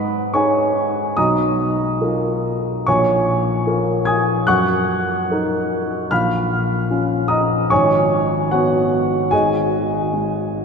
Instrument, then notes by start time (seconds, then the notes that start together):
grand piano
Already playing: G#2 B4 F#5 B5
0.34 D#4 G#4 C#5 G#5 C#6
1.17 B1 D#5 A#5 D#6
2.01 F4 A#4
2.87 A#1 C#5 G#5 C#6
3.67 F4 A#4
4.05 G#5 D#6 G#6
4.47 F#2 F#5 C#6 F#6
5.31 D#4 A#4
6.11 A#1 F5 B5 F6
6.90 C#4 F4
7.28 D#5 A#5 D#6
7.70 G#1 C#5 G#5 C#6
8.51 B3 F#4 C#5 F#5
9.31 G#1 G#4 D#5 G#5
10.13 G#3